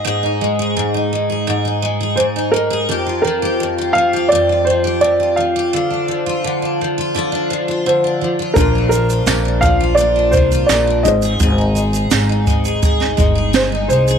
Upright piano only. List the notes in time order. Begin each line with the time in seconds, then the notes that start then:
Already playing: D#5
2.16 C5
2.52 A#4
3.22 A#4
3.93 F5
4.29 D5
4.65 C5
5.01 D5
5.36 F5
7.86 C5
8.54 A#4
8.89 A#4
9.61 F5
9.95 D5
10.31 C5
10.67 D5
11.03 D#5
13.54 C5
13.88 C5